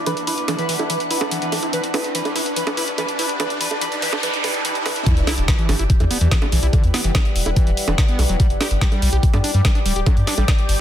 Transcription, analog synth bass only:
5.17 E1
5.38 E1
5.69 G1
5.79 G1
6.00 E2
6.21 E2
6.52 B1
6.63 B1
6.84 E2
7.04 F#1
7.36 E1
7.46 E1
7.67 E1
7.88 E1
8.19 B1
8.29 E1
8.50 G1
8.71 G1
9.02 B1
9.13 B1
9.34 G2
9.54 G2
9.86 D1
9.96 D1
10.17 G2
10.38 A1
10.69 G1

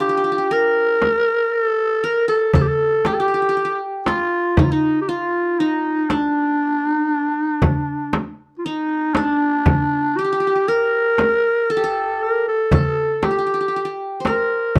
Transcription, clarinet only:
0.01 G4
0.53 A#4
1.53 A4
2.05 A#4
2.28 A4
2.54 A4
2.62 G4
2.68 A4
3.07 G4
3.13 A4
3.20 G4
4.06 F4
4.58 D#4
4.64 F4
4.72 D#4
5.01 G4
5.09 F4
5.60 D#4
6.10 D4
6.94 D#4
7.09 D4
7.40 D#4
7.54 D4
8.58 F4
8.65 D#4
9.14 D4
10.17 G4
10.68 A#4
11.72 A4
12.23 A#4
12.48 A4
12.74 A4
13.24 G4
14.27 A#4

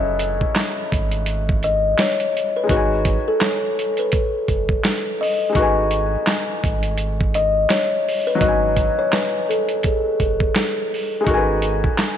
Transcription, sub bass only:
Already playing: F#1
0.93 G#1
2.70 G#1
4.49 F#1
5.56 G#1
6.64 G#1
8.41 G#1
10.20 F#1
11.27 G#1

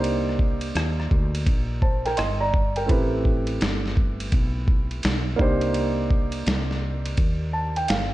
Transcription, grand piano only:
Already playing: A#3 D4 D#4 G4 C5
1.82 C5 A5
2.05 A#4 G5
2.17 D#5 C6
2.41 D5 A#5
2.76 A#4 G5
2.86 A3 C4 E4 G4
2.91 B4
5.36 A#3 D4 D#4 G4
5.41 C5
7.53 A5
7.77 G5
7.89 F5

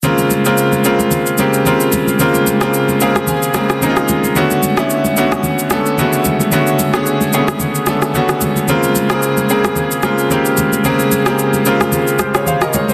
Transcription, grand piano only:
0.04 C#3 G#3 A#3 C4 F4
0.46 C#3 G#3 A#3 C4 F4
0.85 C#3 G#3 A#3 C4 F4
1.39 C#3 G#3 A#3 C4 G4
1.66 C#3 G#3 A#3 C4 F4
2.20 C#3 G#3 A#3 C4 F4
2.62 C#3 G#3 A#3 C4 F4
3.01 C#3 G#3 A#3 C4 G#4 F5
3.28 G#5
3.55 C#3 G#3 A#3 C4 G#4
3.82 C#3 G#3 A#3 C4 D#4 A#5
3.90 F4
4.36 D3 A3 B3 C#4 F#4
4.78 D3 A3 B3 C#4 E4
5.17 D3 A3 B3 C#4 F#4
5.71 D3 A3 B3 C#4 A4
5.98 C#3 A3 B3 C#4 F#4
6.05 D3
6.52 D3 A3 B3 C#4 F#4
6.94 D3 A3 B3 C#4 G#4
7.33 C#3 A3 B3 C#4 G#4
7.40 D3
7.87 D3 A3 B3 C#4 A4
8.15 C#3 A3 B3 C#4 F#4
8.21 D3
8.69 C#3 G#3 A#3 C4 F4
9.10 C#3 G#3 A#3 C4 G#4
9.50 C#3 G#3 A#3 C4 G#4
10.04 C#3 G#3 A#3 C4 F4
10.31 C#3 G#3 A#3 C4 G4
10.85 C#3 G#3 A#3 C4 G#4
11.27 C#3 G#3 A#3 C4 G4
11.66 C#3 G#3 A#3 C4 F4
12.20 G4 C5
12.35 G#4 C#5
12.47 C5 F5
12.62 A#4 D#5
12.74 G#4 C#5
12.89 G4 C5

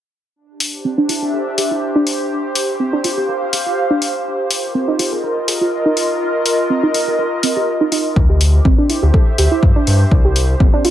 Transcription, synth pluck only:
0.85 C4
0.98 D4
1.09 E4
1.22 G4
1.33 A4
1.58 G4
1.71 E4
1.96 D4
2.80 C4
2.93 D4
3.04 F4
3.17 G4
3.29 A#4
3.53 G4
3.66 F4
3.91 D4
4.75 C4
4.88 D#4
4.99 F4
5.12 G#4
5.24 A#4
5.48 G#4
5.61 F4
5.86 D#4
6.70 C4
6.83 D#4
7.08 G4
7.19 A#4
7.43 C4
7.56 G4
7.81 D#4
7.92 D#4
8.30 G4
8.65 C4
8.78 D4
8.89 E4
9.03 G4
9.14 A4
9.38 G4
9.51 E4
9.76 D4
10.25 G4
10.60 C4
10.73 D4
10.85 F4

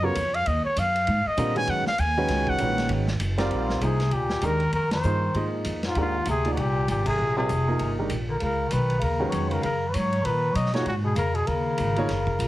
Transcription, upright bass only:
Already playing: F#2
0.16 F2
0.46 D#2
0.66 muted upright bass stroke
0.76 F#2
1.07 G#2
1.26 muted upright bass stroke
1.37 A#2
1.67 F#2
1.87 muted upright bass stroke
1.98 D#2
2.28 C#2
2.60 A#1
2.89 G#1
3.20 F#1
3.51 A#1
3.81 C2
4.11 D2
4.41 D#2
4.72 F2
5.04 G2
5.34 G#2
5.65 F2
5.96 D#2
6.27 D2
6.56 C2
6.88 G#1
7.18 A#1
7.50 F1
7.80 G1
8.10 A#1
8.42 C#2
8.72 B1
9.02 D#2
9.33 F2
9.63 F#2
9.95 G#2
10.25 A#2
10.55 B2
10.85 G#2
11.15 F2
11.47 D#2
11.79 G#1
12.09 F#1
12.39 A#1

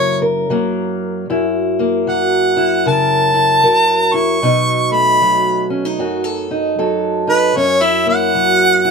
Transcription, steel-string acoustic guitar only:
Already playing: F#2 C#3 F#3 A#3 E4 A#4
0.22 A#4
0.50 F#3 A#3
1.30 F#2 E4
1.79 A#3
2.07 F#3
2.57 E4
2.86 C#3 A#4
3.34 E4
3.63 F#3 A#4
4.14 E4
4.42 B2 D#4
4.92 A3
5.22 F#3
5.70 C#4
5.85 D#4
5.99 F#2 F#4
6.24 A4
6.51 D#4
6.79 F#3 A4
7.27 D#4
7.56 F#2 C#4
7.81 E4
8.06 A#3
8.35 F#3
8.85 E4

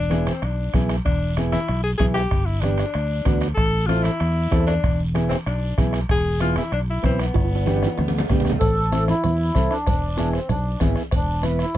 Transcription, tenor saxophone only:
Already playing: D4
0.27 C4
0.44 D4
1.05 D4
1.52 E4
1.83 G#4
1.98 G#4
2.14 G4
2.46 E4
2.61 D4
3.54 A4
3.86 F4
4.03 E4
4.67 D4
5.29 C4
5.47 D4
6.11 G#4
6.41 F4
6.58 E4
6.73 D4
6.90 E4
7.05 C4
7.22 B3

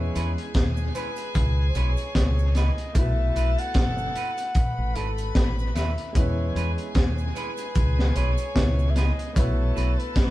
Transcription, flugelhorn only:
Already playing: C#5
0.95 B4
1.69 C5
1.76 C#5
2.56 D#5
2.97 E5
3.59 F#5
4.96 A4
5.75 E5
6.16 C#5
7.36 B4
8.15 C#5
8.90 E5
8.96 D#5
9.36 C#5
9.98 B4

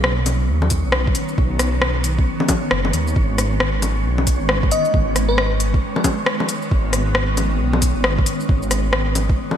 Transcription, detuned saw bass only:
Already playing: B1
0.49 D#2
0.85 B1
1.38 B1
2.71 F#1
2.93 D#2
3.16 G#1
4.05 B1
4.41 G#1
4.94 G#1
6.71 G#1
7.60 B1
7.96 G#1
8.49 G#1

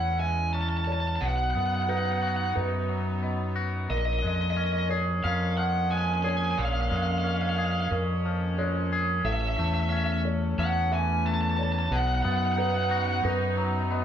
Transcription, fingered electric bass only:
Already playing: E2
1.22 B1
1.55 F#2
2.57 F#2
3.90 A#1
4.24 F2
5.25 F2
6.58 A#1
6.91 F2
7.91 F2
9.24 A1
9.58 E2
10.58 E2
11.91 B1
12.24 F#2
13.25 F#2

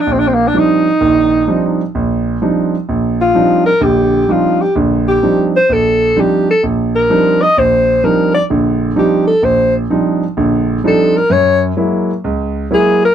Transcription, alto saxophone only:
0.00 D4
0.12 C4
0.19 D4
0.27 C4
0.34 A#3
0.48 D4
0.58 D#4
3.21 F4
3.66 A#4
3.83 G4
4.31 F4
4.61 G4
5.08 G4
5.56 C5
5.73 A4
6.20 G4
6.51 A4
6.96 A#4
7.42 D#5
7.59 C5
8.04 A#4
8.34 D5
8.99 G4
9.27 A4
9.45 C5
10.87 A4
11.17 A#4
11.32 C#5
12.74 G#4
13.05 A#4

